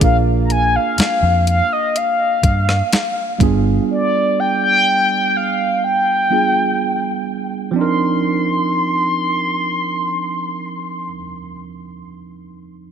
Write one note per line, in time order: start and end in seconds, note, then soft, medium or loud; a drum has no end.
0.00 0.76 A#1 loud
0.00 3.36 A#3 medium
0.00 3.36 D4 medium
0.00 3.37 F4 medium
0.00 3.35 G#4 medium
0.00 0.17 F5 loud
0.00 kick loud
0.00 closed hi-hat medium
0.04 3.38 A#4 medium
0.45 0.53 A#5 medium
0.50 0.77 G#5 loud
0.50 closed hi-hat medium
0.76 1.48 F5 loud
0.98 muted fingered electric bass stroke soft
0.98 snare loud
0.98 closed hi-hat medium
1.23 1.60 F2 loud
1.47 1.74 F5 loud
1.47 closed hi-hat medium
1.73 1.99 D#5 loud
1.96 3.41 F5 loud
1.96 closed hi-hat medium
2.43 2.81 G2 loud
2.43 kick medium
2.43 closed hi-hat medium
2.69 cross-stick loud
2.93 snare loud
2.93 closed hi-hat medium
3.38 3.78 G1 loud
3.38 6.26 G3 medium
3.38 6.26 B3 medium
3.38 6.27 D4 medium
3.38 6.28 F4 medium
3.38 kick loud
3.38 closed hi-hat medium
3.43 6.28 G#4 medium
3.91 4.41 D5 loud
4.40 4.63 G5 loud
4.64 5.38 G5 loud
5.37 5.84 F5 loud
5.84 7.24 G5 loud
6.30 7.75 G3 medium
6.30 7.76 B3 soft
6.30 7.75 D4 soft
6.30 7.76 F4 medium
6.30 7.77 G#4 medium
7.71 11.06 F3 medium
7.71 11.08 C4 medium
7.76 11.11 D4 medium
7.76 11.13 D#4 medium
7.76 11.12 C6 medium
7.81 11.16 A#4 medium